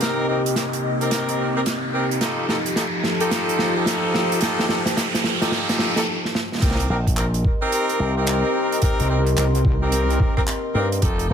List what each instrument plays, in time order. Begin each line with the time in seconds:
Already playing: analog synth pad C3 A#3 D#4, ambient pad C4 G4 D#5, riser
0.01 horn section C4 D#4 G4 A#4, kick, snare, closed hi-hat
0.29 horn section C4 D#4 G4 A#4
0.46 closed hi-hat
0.56 horn section C4 D#4 G4 A#4, kick, snare, closed hi-hat
0.73 closed hi-hat
1.01 horn section C4 D#4 G4 A#4, closed hi-hat
1.11 kick, snare, closed hi-hat
1.29 closed hi-hat
1.56 horn section C4 D#4 G4 A#4
1.66 kick, snare, closed hi-hat
1.94 horn section C4 D#4 G4 A#4
2.11 closed hi-hat
2.21 analog synth pad F3 D#4 G4 A4, horn section D#4 F4 G4 A4, ambient pad F4, kick, snare, closed hi-hat
2.44 ambient pad A5
2.49 horn section D#4 F4 G4 A4, snare
2.66 closed hi-hat
2.75 horn section D#4 F4 G4 A4, ambient pad C5, kick, snare, closed hi-hat
3.04 snare
3.20 horn section D#4 F4 G4 A4, closed hi-hat
3.31 ambient pad G5, kick, snare, closed hi-hat
3.49 closed hi-hat
3.59 snare
3.76 horn section D#4 F4 G4 A4
3.86 kick, snare, closed hi-hat
4.14 snare
4.32 closed hi-hat
4.41 horn section D#4 F4 G4 A4, kick, snare, closed hi-hat
4.59 snare
4.69 horn section D#4 F4 G4 A4, snare
4.86 snare, closed hi-hat
4.96 horn section D#4 F4 G4 A4, kick, snare, closed hi-hat
5.14 snare, closed hi-hat
5.24 snare
5.42 horn section D#4 F4 G4 A4, snare, closed hi-hat
5.52 kick, snare
5.69 snare, closed hi-hat
5.79 snare
5.96 horn section D#4 F4 G4 A4, snare, closed hi-hat
6.25 snare
6.35 snare
6.52 snare
6.55 snare
6.57 snare
6.60 wobble bass C2, horn section C4 D#4 G4, analog synth pad D#5 C6, kick, snare, crash
6.62 ambient pad C4, horn section A#4, analog synth pad A#4, snare, closed hi-hat
6.67 snare
6.71 snare
6.75 ambient pad G4, snare
6.80 closed hi-hat
6.90 slap bass A#1, horn section C4 D#4 G4 A#4
7.07 ambient pad D#5, kick, closed hi-hat
7.16 horn section C4 D#4 G4 A#4, clap, closed hi-hat
7.34 closed hi-hat
7.45 kick
7.62 horn section C4 D#4 G4 A#4
7.72 closed hi-hat
7.89 closed hi-hat
8.00 slap bass C2
8.17 horn section C4 D#4 G4 A#4
8.27 clap, closed hi-hat
8.72 closed hi-hat
8.82 horn section C4 D#4 G4 A#4, kick, closed hi-hat
9.00 wobble bass C2, cross-stick, closed hi-hat
9.10 horn section C4 D#4 G4 A#4
9.27 closed hi-hat
9.37 wobble bass C2, horn section C4 D#4 G4 A#4, clap, closed hi-hat
9.55 closed hi-hat
9.65 kick
9.82 horn section C4 D#4 G4 A#4
9.92 closed hi-hat
10.10 closed hi-hat
10.20 kick
10.37 horn section C4 D#4 G4 A#4, kick, cross-stick
10.47 clap, closed hi-hat
10.75 slap bass G2, horn section C4 D#4 G4 A#4
10.92 closed hi-hat
11.02 wobble bass F1, horn section D#4 F4 G4 A4, analog synth pad A4 G5 D#6, kick, closed hi-hat
11.19 closed hi-hat
11.30 slap bass D#1, horn section D#4 F4 G4 A4